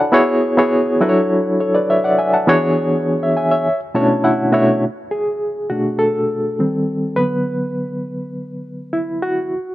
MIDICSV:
0, 0, Header, 1, 2, 480
1, 0, Start_track
1, 0, Tempo, 586510
1, 115, Time_signature, 4, 2, 24, 8
1, 7979, End_track
2, 0, Start_track
2, 0, Title_t, "Reed electric piano"
2, 0, Program_c, 0, 4
2, 0, Control_c, 0, 64, 127
2, 0, Note_on_c, 0, 62, 87
2, 0, Note_on_c, 0, 64, 76
2, 0, Note_on_c, 0, 66, 79
2, 0, Note_on_c, 0, 69, 81
2, 0, Note_on_c, 0, 73, 89
2, 0, Note_on_c, 0, 74, 55
2, 0, Note_on_c, 0, 78, 63
2, 0, Note_on_c, 0, 80, 59
2, 0, Note_on_c, 0, 81, 77
2, 0, Note_on_c, 0, 83, 64
2, 99, Note_on_c, 0, 59, 107
2, 104, Note_off_c, 0, 64, 0
2, 104, Note_on_c, 0, 64, 107
2, 108, Note_off_c, 0, 66, 0
2, 108, Note_on_c, 0, 66, 101
2, 112, Note_on_c, 0, 68, 102
2, 116, Note_off_c, 0, 73, 0
2, 116, Note_on_c, 0, 73, 127
2, 125, Control_c, 0, 64, 0
2, 127, Note_off_c, 0, 80, 0
2, 128, Note_off_c, 0, 62, 0
2, 128, Note_off_c, 0, 81, 0
2, 131, Note_off_c, 0, 83, 0
2, 133, Note_off_c, 0, 69, 0
2, 221, Note_off_c, 0, 78, 0
2, 223, Note_off_c, 0, 74, 0
2, 290, Control_c, 0, 64, 127
2, 384, Note_off_c, 0, 59, 0
2, 386, Note_off_c, 0, 64, 0
2, 388, Note_off_c, 0, 66, 0
2, 390, Note_off_c, 0, 68, 0
2, 392, Note_off_c, 0, 73, 0
2, 468, Note_on_c, 0, 59, 78
2, 469, Note_on_c, 0, 64, 68
2, 475, Note_on_c, 0, 66, 73
2, 479, Note_on_c, 0, 68, 76
2, 480, Note_on_c, 0, 73, 85
2, 748, Note_off_c, 0, 59, 0
2, 749, Note_off_c, 0, 64, 0
2, 752, Note_off_c, 0, 66, 0
2, 754, Note_off_c, 0, 68, 0
2, 754, Note_off_c, 0, 73, 0
2, 823, Note_on_c, 0, 54, 91
2, 825, Note_on_c, 0, 62, 83
2, 828, Note_on_c, 0, 64, 85
2, 835, Note_on_c, 0, 66, 81
2, 836, Note_on_c, 0, 69, 83
2, 838, Note_on_c, 0, 71, 77
2, 846, Control_c, 0, 64, 0
2, 890, Note_off_c, 0, 71, 0
2, 892, Note_on_c, 0, 73, 94
2, 998, Control_c, 0, 64, 127
2, 1303, Note_off_c, 0, 73, 0
2, 1307, Note_off_c, 0, 69, 0
2, 1313, Note_on_c, 0, 73, 62
2, 1317, Note_on_c, 0, 69, 52
2, 1428, Note_off_c, 0, 73, 0
2, 1429, Note_on_c, 0, 74, 70
2, 1430, Note_off_c, 0, 69, 0
2, 1434, Note_on_c, 0, 71, 58
2, 1546, Note_off_c, 0, 74, 0
2, 1549, Note_off_c, 0, 71, 0
2, 1554, Note_on_c, 0, 76, 76
2, 1558, Note_on_c, 0, 73, 64
2, 1597, Note_off_c, 0, 54, 0
2, 1598, Note_off_c, 0, 62, 0
2, 1600, Note_off_c, 0, 64, 0
2, 1603, Note_off_c, 0, 66, 0
2, 1669, Note_off_c, 0, 76, 0
2, 1671, Note_off_c, 0, 73, 0
2, 1672, Note_on_c, 0, 78, 75
2, 1678, Note_on_c, 0, 74, 65
2, 1788, Note_off_c, 0, 78, 0
2, 1788, Note_on_c, 0, 80, 63
2, 1791, Note_off_c, 0, 74, 0
2, 1792, Note_on_c, 0, 76, 56
2, 1905, Note_off_c, 0, 80, 0
2, 1908, Note_off_c, 0, 76, 0
2, 1910, Note_on_c, 0, 81, 59
2, 1913, Note_on_c, 0, 78, 54
2, 2023, Note_on_c, 0, 52, 113
2, 2026, Note_on_c, 0, 59, 98
2, 2031, Note_on_c, 0, 62, 99
2, 2033, Note_on_c, 0, 66, 103
2, 2037, Note_on_c, 0, 68, 105
2, 2038, Note_on_c, 0, 73, 123
2, 2045, Control_c, 0, 64, 0
2, 2141, Note_off_c, 0, 81, 0
2, 2142, Note_off_c, 0, 78, 0
2, 2200, Control_c, 0, 64, 127
2, 2517, Note_off_c, 0, 73, 0
2, 2582, Note_off_c, 0, 52, 0
2, 2583, Note_off_c, 0, 59, 0
2, 2586, Note_off_c, 0, 62, 0
2, 2587, Note_off_c, 0, 66, 0
2, 2589, Note_off_c, 0, 68, 0
2, 2642, Note_on_c, 0, 76, 65
2, 2646, Note_on_c, 0, 73, 52
2, 2751, Note_off_c, 0, 76, 0
2, 2755, Note_off_c, 0, 73, 0
2, 2756, Note_on_c, 0, 80, 66
2, 2761, Note_on_c, 0, 76, 59
2, 2865, Note_off_c, 0, 76, 0
2, 2869, Note_off_c, 0, 80, 0
2, 2875, Note_on_c, 0, 76, 65
2, 2877, Note_on_c, 0, 73, 51
2, 3006, Control_c, 0, 64, 0
2, 3103, Note_off_c, 0, 76, 0
2, 3104, Note_off_c, 0, 73, 0
2, 3161, Control_c, 0, 64, 127
2, 3228, Note_on_c, 0, 47, 82
2, 3230, Note_on_c, 0, 57, 76
2, 3233, Note_on_c, 0, 61, 63
2, 3233, Note_on_c, 0, 81, 65
2, 3234, Note_on_c, 0, 64, 77
2, 3239, Note_on_c, 0, 66, 75
2, 3241, Note_on_c, 0, 73, 87
2, 3286, Note_on_c, 0, 62, 78
2, 3287, Note_off_c, 0, 61, 0
2, 3458, Note_off_c, 0, 81, 0
2, 3459, Note_off_c, 0, 64, 0
2, 3469, Note_on_c, 0, 64, 81
2, 3473, Note_on_c, 0, 78, 77
2, 3600, Note_off_c, 0, 47, 0
2, 3601, Note_off_c, 0, 57, 0
2, 3606, Note_off_c, 0, 66, 0
2, 3607, Note_off_c, 0, 73, 0
2, 3629, Note_off_c, 0, 62, 0
2, 3698, Note_off_c, 0, 78, 0
2, 3702, Note_off_c, 0, 64, 0
2, 3702, Note_on_c, 0, 47, 72
2, 3703, Note_on_c, 0, 66, 80
2, 3706, Note_on_c, 0, 57, 73
2, 3709, Note_on_c, 0, 62, 67
2, 3710, Note_on_c, 0, 76, 64
2, 3712, Note_on_c, 0, 64, 65
2, 3716, Note_on_c, 0, 73, 88
2, 3893, Note_off_c, 0, 47, 0
2, 3895, Note_off_c, 0, 57, 0
2, 3896, Note_off_c, 0, 62, 0
2, 3898, Note_off_c, 0, 64, 0
2, 3899, Note_off_c, 0, 66, 0
2, 3900, Note_off_c, 0, 73, 0
2, 3936, Note_off_c, 0, 76, 0
2, 3966, Control_c, 0, 64, 0
2, 4120, Control_c, 0, 64, 127
2, 4184, Note_on_c, 0, 68, 74
2, 4663, Note_on_c, 0, 66, 78
2, 4668, Note_on_c, 0, 47, 47
2, 4673, Note_on_c, 0, 57, 46
2, 4678, Note_on_c, 0, 62, 56
2, 4684, Note_off_c, 0, 68, 0
2, 4900, Note_on_c, 0, 69, 88
2, 4917, Note_off_c, 0, 66, 0
2, 4991, Note_off_c, 0, 47, 0
2, 4993, Note_off_c, 0, 57, 0
2, 4996, Note_off_c, 0, 62, 0
2, 5394, Note_on_c, 0, 51, 55
2, 5398, Note_on_c, 0, 55, 51
2, 5402, Note_on_c, 0, 60, 59
2, 5407, Control_c, 0, 64, 0
2, 5569, Control_c, 0, 64, 127
2, 5851, Note_off_c, 0, 51, 0
2, 5853, Note_off_c, 0, 55, 0
2, 5855, Note_off_c, 0, 60, 0
2, 5862, Note_on_c, 0, 71, 84
2, 5868, Note_on_c, 0, 50, 52
2, 5870, Note_on_c, 0, 54, 48
2, 5878, Note_on_c, 0, 59, 61
2, 5887, Control_c, 0, 64, 0
2, 5897, Note_off_c, 0, 69, 0
2, 6040, Control_c, 0, 64, 127
2, 6317, Note_off_c, 0, 71, 0
2, 7308, Note_on_c, 0, 64, 78
2, 7536, Note_off_c, 0, 64, 0
2, 7549, Note_on_c, 0, 66, 82
2, 7760, Note_off_c, 0, 50, 0
2, 7761, Note_off_c, 0, 54, 0
2, 7765, Note_off_c, 0, 59, 0
2, 7809, Control_c, 0, 64, 0
2, 7959, Control_c, 0, 64, 127
2, 7979, Note_off_c, 0, 66, 0
2, 7979, End_track
0, 0, End_of_file